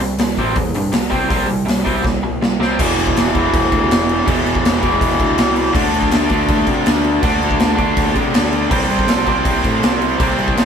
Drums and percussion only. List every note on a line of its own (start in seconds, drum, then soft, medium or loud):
0.00 open hi-hat soft
0.19 snare loud
0.19 open hi-hat medium
0.38 kick medium
0.38 open hi-hat soft
0.56 kick loud
0.56 open hi-hat medium
0.74 open hi-hat medium
0.93 snare loud
0.93 open hi-hat medium
1.12 kick medium
1.12 open hi-hat medium
1.30 kick loud
1.30 open hi-hat medium
1.50 open hi-hat soft
1.68 snare loud
1.68 open hi-hat medium
1.86 kick medium
1.86 open hi-hat medium
2.04 kick loud
2.04 snare medium
2.42 snare medium
2.62 snare medium
2.79 kick loud
2.79 crash loud
2.99 crash medium
3.07 kick medium
3.17 snare loud
3.17 crash medium
3.35 kick medium
3.35 crash medium
3.54 kick loud
3.54 crash medium
3.72 kick loud
3.72 crash medium
3.91 snare loud
3.91 crash medium
4.09 crash medium
4.28 kick loud
4.28 crash loud
4.46 crash medium
4.55 kick medium
4.65 snare loud
4.65 crash medium
4.83 kick medium
4.83 crash medium
5.01 kick loud
5.01 crash medium
5.20 kick medium
5.20 crash medium
5.38 snare loud
5.38 crash loud
5.56 crash medium
5.75 kick loud
5.75 crash loud
5.94 crash medium
6.02 kick medium
6.11 snare loud
6.11 crash loud
6.29 kick medium
6.29 crash medium
6.48 kick loud
6.48 crash medium
6.66 kick medium
6.66 crash medium
6.86 snare loud
6.86 crash medium
7.04 crash medium
7.23 kick loud
7.23 crash medium
7.42 crash medium
7.51 kick medium
7.60 snare loud
7.60 crash medium
7.78 kick medium
7.78 crash medium
7.97 kick loud
7.97 crash medium
8.15 kick medium
8.15 crash medium
8.34 snare loud
8.34 crash medium
8.53 crash medium
8.71 kick loud
8.71 crash loud
8.90 crash medium
8.99 kick loud
9.08 snare loud
9.08 crash loud
9.27 kick medium
9.27 crash medium
9.45 kick loud
9.45 crash medium
9.64 kick medium
9.64 crash medium
9.83 snare loud
9.83 crash medium
10.02 crash medium
10.20 kick loud
10.20 crash loud
10.39 crash medium
10.48 kick medium
10.57 snare loud
10.57 crash medium